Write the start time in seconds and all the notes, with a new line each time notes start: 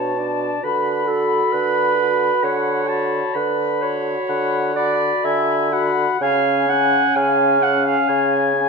Already playing: B2 D4 C#5 A5
0.17 D4 D5 A5
0.62 D3 F#4 B4 B5
1.07 F#4 A4 B5
1.53 D3 B4
1.97 F#4 B5
2.43 D3 C#5 F#5
2.87 F#4 A5 B5
3.34 D3 B4 B5
3.82 F#4 C#5 B5
4.29 D3 F#5
4.75 F#4 D5 B5
5.25 D3 E5 G#5
5.72 F#4 F#5 B5
6.21 C#3 C#4 F5 G#5
6.69 C#4 F#5 G#5
7.16 C#3 F5 G#5
7.62 C#4 F#5 G#5
7.86 F5
8.08 C#3 G#5
8.56 C#4 G#5